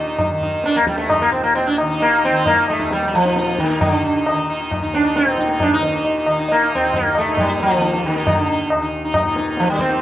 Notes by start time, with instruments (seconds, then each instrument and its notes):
Already playing: tanpura D#2 A#2 D#3
0.07 sitar D#4
0.18 sitar D#4, tabla na, tabla ge
0.29 tanpura D#3, sitar D#4
0.41 sitar D#4, tabla ge
0.54 sitar D#4
0.64 sitar D4, tabla te
0.75 sitar A#3, tabla te
0.80 tanpura D#2
0.87 sitar G3, tabla ke
0.98 sitar A3, tabla te
1.09 sitar D#4, tabla na, tabla ge
1.22 sitar A#3
1.30 tanpura A#2, sitar C4
1.43 sitar A#3
1.55 sitar C4, tabla tin
1.67 sitar D4
1.78 tanpura D#3, sitar D#4, tabla na
1.90 sitar D#4
2.00 sitar A#3, tabla tin
2.13 sitar D#4
2.25 sitar C4
2.30 tanpura D#3, sitar D#4
2.46 sitar A#3, tabla tin, tabla ge
2.57 sitar D#4
2.68 sitar A3, tabla na
2.80 tanpura D#2, sitar D#4, tabla ke
2.91 sitar G3, tabla te
3.02 tabla te
3.08 sitar G3
3.14 sitar F3, tabla ke
3.25 sitar D#4, tabla te
3.31 tanpura A#2
3.36 sitar D#4, tabla te
3.48 sitar D#4, tabla te
3.59 sitar D#3, tabla ke
3.70 sitar D#4, tabla te
3.80 sitar D3, tanpura D#3, tabla na, tabla ge
3.92 sitar D#4
4.05 sitar D#4
4.16 sitar D#4
4.26 tanpura D#3, sitar D#4, tabla na
4.50 sitar D#4
4.61 sitar D#4
4.71 sitar D#4, tabla na, tabla ge
4.79 tanpura D#2
4.83 sitar D#4
4.94 sitar D4, tabla te
5.05 sitar D#4
5.16 sitar C4, tabla te
5.27 tanpura A#2, sitar D#4, tabla te
5.38 sitar D#4, tabla ke
5.49 sitar D#4, tabla te
5.60 sitar D4, tabla na, tabla ge
5.74 sitar D#4
5.78 tanpura D#3
5.83 sitar D#4, tabla te
5.95 sitar D#4
6.04 tabla tin
6.17 sitar D#4
6.26 tanpura D#3, sitar D#4, tabla na
6.39 sitar D#4
6.49 sitar A#3, tabla tin
6.62 sitar D#4
6.71 tanpura D#2, sitar C4, tabla na
6.84 sitar D#4
6.93 sitar A#3, tabla tin, tabla ge
7.05 sitar D#4
7.15 sitar A3, tabla na
7.24 tanpura A#2, sitar D#4
7.37 sitar G3, tabla na, tabla ge
7.50 sitar D#4
7.60 sitar F3, tabla te
7.72 tanpura D#3, sitar D#4
7.82 sitar D#4, tabla te
7.93 sitar D#4, tabla te
8.04 sitar D#3, tabla ke
8.16 sitar D#4, tabla te
8.22 tanpura D#3
8.27 sitar D3, tabla na, tabla ge
8.39 sitar D#4
8.49 sitar D#4
8.70 tanpura D#2, tabla na
8.82 sitar D#4
9.05 sitar D#4
9.14 sitar D#4, tabla na, tabla ge
9.21 tanpura A#2
9.25 sitar D#4
9.36 sitar D#4, tabla te
9.48 sitar D#4
9.57 sitar F3, tabla te
9.68 tanpura D#3, sitar G3, tabla te
9.79 sitar C4, tabla ke
9.89 sitar D#4, tabla te